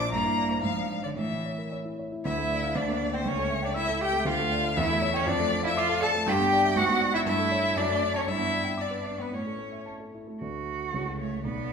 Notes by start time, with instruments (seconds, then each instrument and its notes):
Already playing: grand piano A#1 F4 D5, cello D4, violin D6
0.00 grand piano C5
0.12 grand piano G2, cello A#3, violin A#5
0.25 grand piano E4
0.38 grand piano D5
0.51 grand piano C5
0.63 grand piano G#2, cello F3, violin F5
0.76 grand piano D4
0.90 grand piano D5
1.03 cello D3, grand piano C#5, violin D5
1.16 grand piano A2, cello E3, violin E5
1.31 grand piano E4
1.45 grand piano C#5
1.58 grand piano A#4
1.72 grand piano C#5
1.85 grand piano E4
1.99 grand piano C#5
2.12 grand piano E4
2.25 grand piano D2, cello E4, violin E5
2.38 grand piano A3
2.51 grand piano D5
2.63 grand piano F5
2.75 grand piano D2, cello D4, violin D5
2.88 grand piano A#3
3.02 grand piano D5
3.14 cello C4, violin C5, grand piano G5
3.25 grand piano C#2, cello C#4, violin C#5
3.38 grand piano A3
3.50 grand piano E5
3.62 cello D4, violin D5, grand piano G5
3.74 cello E4, violin E5, grand piano E6
3.88 grand piano A4
4.00 cello G4, grand piano E5, violin G5
4.13 grand piano A3
4.25 grand piano D2, cello F4, violin F5
4.39 grand piano A3
4.51 grand piano D5
4.65 grand piano F5
4.76 grand piano E2, cello E4, violin E5
4.90 grand piano A3
5.01 grand piano C#5
5.13 cello C#4, violin C#5, grand piano G5
5.26 grand piano F2, cello D4, violin D5
5.39 grand piano A3
5.52 grand piano D5
5.63 cello E4, violin E5, grand piano F5
5.77 cello F4, violin F5, grand piano D6
5.89 grand piano A4
6.01 cello A4, grand piano D5, violin A5
6.15 grand piano A3
6.26 grand piano G2, cello G4, violin G5
6.40 grand piano B3
6.52 grand piano D5
6.65 grand piano E5
6.76 grand piano G#2, cello F#4, violin F#5
6.89 grand piano B3
7.00 grand piano D5
7.13 cello E4, grand piano E5, violin E5
7.26 grand piano G2, cello E4, violin E5
7.39 grand piano A3
7.51 grand piano C#5
7.64 grand piano E5
7.76 grand piano F#2, cello D4, violin D5
7.89 grand piano A3
8.02 grand piano D5
8.14 cello C#4, violin C#5, grand piano A5
8.27 grand piano G2, cello E4, violin E5
8.39 grand piano B3
8.51 grand piano D5
8.64 grand piano G5
8.78 cello D4, violin D5, grand piano D6
8.91 grand piano B4
9.05 grand piano D5
9.18 grand piano B3, cello B3, violin B4
9.31 grand piano A2, cello C#4, violin C#5
9.46 grand piano A3
9.59 grand piano A4
9.72 grand piano E5
9.86 grand piano A5
10.00 grand piano A4
10.15 grand piano E4
10.27 grand piano A3
10.41 grand piano D2 D3 A3 D4 A4, cello F#4
10.93 grand piano C#2 C#3 A3 E4 A4, violin A4
11.19 cello A3, violin C#5
11.44 grand piano B1 B2, cello B3, violin D5